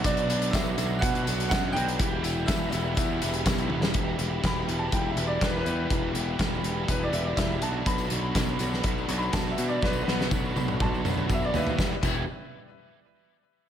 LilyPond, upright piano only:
\new Staff \with { instrumentName = "Upright piano" } { \time 4/4 \key e \minor \tempo 4 = 122 d''4 e''4 fis''4 fis''8 g''8~ | g''4 e''8 e''8 e''4. r8 | r4 \tuplet 3/2 { b''4 a''8 g''8 e''8 d''8 b'8 <ais' b'>4~ } | <ais' b'>4~ <ais' b'>16 r8. b'16 d''16 e''16 d''16 e''8 a''8 |
b''2 \tuplet 3/2 { r4 b''8 a''8 e''8 d''8 } | \tuplet 3/2 { b'8 <fis' b'>8. r16 } r4 a''4 e''16 d''16 <b' e''>8 | r1 | }